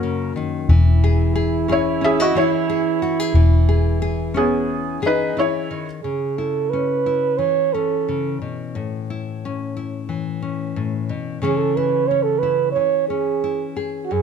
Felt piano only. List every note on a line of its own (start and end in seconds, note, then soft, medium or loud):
0.00 0.33 C#4 medium
0.00 0.32 A#4 medium
1.72 2.01 E4 medium
1.72 2.05 C#5 medium
2.04 2.19 G#4 medium
2.04 2.19 E5 medium
2.20 2.36 F#4 medium
2.20 2.35 D#5 medium
2.37 2.99 E4 medium
2.37 2.99 C#5 medium
4.37 5.00 B3 medium
4.37 5.00 G#4 medium
5.06 5.36 D#4 medium
5.06 5.36 B4 medium
5.39 5.85 E4 medium
5.39 5.85 C#5 medium